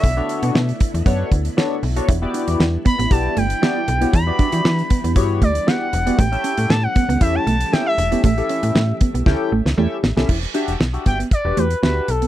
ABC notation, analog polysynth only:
X:1
M:4/4
L:1/16
Q:1/4=117
K:Edor
V:1 name="Analog polysynth"
z [B,DFAc]3 z4 [B,DFAc]2 z2 [B,DFAc] z2 [B,DFAc] | z [B,EFGd]3 z4 [B,EFGd]2 z2 [B,EFGd] z2 [B,EFGc] | z [B,EFGd]3 z4 [B,EFGc]2 z2 [B,EFGd] z2 [B,EFGd] | z [CEGAe]3 z4 [CEGAe]2 z2 [CEGAe] z2 [CEGAe] |
z [CEGAe]3 z4 [CEGAg]2 z2 [CEGAe] z2 [CEGAe] | z2 [DFGe] z2 [DFGe]2 z2 [DFGB] z2 [DFGe]2 z2 |]